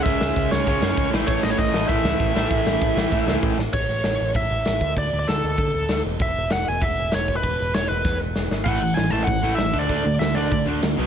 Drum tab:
CC |--------|x-------|--------|x-x-x-x-|
RD |x-x-x-x-|--x-x-x-|x-x-x-x-|--------|
SD |-o-o-o-o|-o-o-o-o|-o-o-o-o|--o---o-|
BD |o-o-o-o-|o-o-o-o-|o-o-o-o-|o---o--o|

CC |x-x-x-x-|x-x-x-x-|x-x-----|x-x-x-x-|
RD |--------|--------|--------|--------|
SD |--o---o-|--o---o-|--o-o-oo|--o---o-|
BD |o---o---|o---o--o|o---o---|o---o--o|

CC |x-x-x-x-|
RD |--------|
SD |--o---o-|
BD |o---o---|